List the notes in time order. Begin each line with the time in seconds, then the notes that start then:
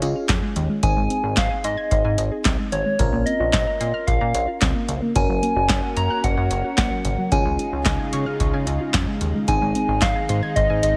0.02 C#2 C#4 F4 G#4 D#5, closed hi-hat
0.15 F4
0.29 F2 C#4, kick, snare, clap, closed hi-hat
0.42 G#3
0.56 D#2 D#3, closed hi-hat
0.69 G#3
0.83 G#1 D#3 C4 D#4 G#4 G#5, kick, closed hi-hat
0.96 G#1 G#3
1.10 C4, closed hi-hat
1.23 G#1 G#4
1.37 G#1 D#5 F5, kick, snare, clap, closed hi-hat
1.50 G#5
1.64 G#2 D#5 C6, closed hi-hat
1.77 G#6
1.91 G#1 C6, kick, closed hi-hat
2.04 G#2 G#5
2.18 G#1 D#5, closed hi-hat
2.32 G#4
2.45 C2 C4, kick, snare, clap, closed hi-hat
2.59 G#3
2.72 G#1 D#3 C#5, closed hi-hat
2.86 G#3
2.99 A#1 C#3 C#4 F4 A#4, kick, closed hi-hat
3.13 A#1 A#3
3.26 C4 D#5, closed hi-hat
3.40 A#1 F4
3.53 A#1 C#5 D#5, kick, snare, clap, closed hi-hat
3.67 A#5
3.80 A#2 D#5 C6, closed hi-hat
3.94 F6
4.07 A#1 F5 C6, kick, closed hi-hat
4.21 A#2 A#5
4.34 A#1 C#5, closed hi-hat
4.48 F4
4.61 C#2 C4, kick, snare, clap, closed hi-hat
4.75 A#3
4.88 C2 C#3, closed hi-hat
5.02 A#3
5.16 F#1 C#3 A#3 C#4 F#4 A#4 G#5, kick, closed hi-hat
5.29 F#1 F#3
5.42 A#3, closed hi-hat
5.56 F#1 F#4
5.69 F#1 C#5, kick, snare, clap, closed hi-hat
5.83 F#5
5.97 F#2 A#5, closed hi-hat
6.10 F#6
6.24 F#1 F#5 A#5, kick, closed hi-hat
6.37 F#2 F#5
6.51 F#1 C#5, closed hi-hat
6.64 F#4
6.78 A#1 A#3 F#5, kick, snare, clap, closed hi-hat
6.91 F#3
7.05 G#1 C#3, closed hi-hat
7.18 F#3
7.31 C#2 C#3 D#3 G#3 C#4 D#4 F4 G#4 G#5, kick, closed hi-hat
7.45 C#2 G#3
7.59 C#4, closed hi-hat
7.72 C#2 F4
7.85 C#2 D#5, kick, snare, clap, closed hi-hat
7.99 G#5
8.13 C#3 C#6, closed hi-hat
8.26 F6
8.40 C#2 C#6, kick, closed hi-hat
8.54 C#3 G#5
8.67 C#2 D#5, closed hi-hat
8.81 F4
8.94 F2 C#4, kick, snare, clap, closed hi-hat
9.08 G#3
9.21 D#2 D#3, closed hi-hat
9.35 G#3
9.48 G#1 D#3 G#3 C4 D#4 G#4 G#5, kick, closed hi-hat
9.62 G#1 G#3
9.75 C4, closed hi-hat
9.89 G#1 G#4
10.02 G#1 D#5 F5, kick, snare, clap, closed hi-hat
10.16 G#5
10.29 G#2 C6, closed hi-hat
10.43 G#6
10.56 G#1 D#5 C6, kick, closed hi-hat
10.70 G#2 G#5
10.83 G#1 D#5, closed hi-hat